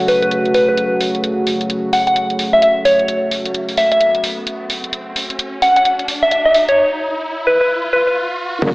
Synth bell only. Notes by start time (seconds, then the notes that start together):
0.08 B4
0.22 B4
0.55 B4
0.69 B4
1.93 F#5
2.07 F#5
2.53 E5
2.62 E5
2.85 C#5
3.78 E5
3.92 E5
5.62 F#5
5.76 F#5
6.23 E5
6.31 E5
6.45 E5
6.69 C#5
7.47 B4
7.61 B4
7.93 B4
8.07 B4